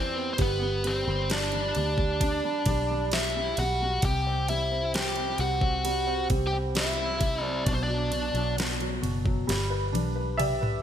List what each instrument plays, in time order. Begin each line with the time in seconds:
Already playing: fingered electric bass E2, grand piano E3 G3 B3, lead electric guitar C4 C5
0.16 grand piano B3
0.34 lead electric guitar C5
0.38 fingered electric bass G1, grand piano G3, lead electric guitar B3 B4, kick, ride
0.62 grand piano G3
0.84 grand piano G3, lead electric guitar C4 C5, ride
1.07 fingered electric bass G1, grand piano G3
1.30 grand piano G3, lead electric guitar D4 D5, snare, ride
1.52 grand piano G3, ride
1.75 fingered electric bass D2, grand piano G3, ride
1.98 grand piano G3, kick
2.21 grand piano D4, kick, ride
2.44 grand piano G3
2.66 fingered electric bass B1, grand piano G3, kick, ride
2.91 grand piano G3
3.12 grand piano G3, lead electric guitar E4 E5, snare, ride
3.36 grand piano G3
3.57 fingered electric bass B1, grand piano G3, lead electric guitar F#4 F#5, ride
3.82 grand piano G3
4.02 fingered electric bass C2, grand piano C3, lead electric guitar G4 G5, kick, ride
4.27 grand piano C4
4.48 grand piano G3, lead electric guitar E4 E5, ride
4.71 grand piano C4
4.94 grand piano G3, lead electric guitar G4 G5, snare, ride
5.16 grand piano C4, ride
5.38 fingered electric bass C2, grand piano C3, lead electric guitar F#4 F#5, ride
5.61 grand piano C4, kick
5.84 grand piano G3, ride
6.07 grand piano C4
6.30 fingered electric bass C2, grand piano G3, kick, ride
6.47 lead electric guitar G4 G5
6.52 grand piano C4
6.75 grand piano G3, lead electric guitar E4 E5, snare, ride
6.97 grand piano C4
7.20 grand piano C3, kick, ride
7.42 grand piano C4, lead electric guitar D5
7.65 fingered electric bass B1, grand piano B2, lead electric guitar D4 D5, kick, ride
7.74 lead electric guitar C5
7.83 lead electric guitar D4 D5
7.88 grand piano F#3
8.11 grand piano B2, ride
8.34 fingered electric bass B1, grand piano F#3, ride
8.57 grand piano B2, snare, ride
8.80 grand piano F#3, ride
9.02 fingered electric bass F#1, grand piano B2, ride
9.25 grand piano F#3, kick
9.47 fingered electric bass G1, grand piano G3, snare, ride
9.70 grand piano B4
9.92 fingered electric bass B1, grand piano D4, high tom, ride
10.16 grand piano B4
10.37 grand piano G4 D5 E5, mid tom, ride
10.61 grand piano B4, mid tom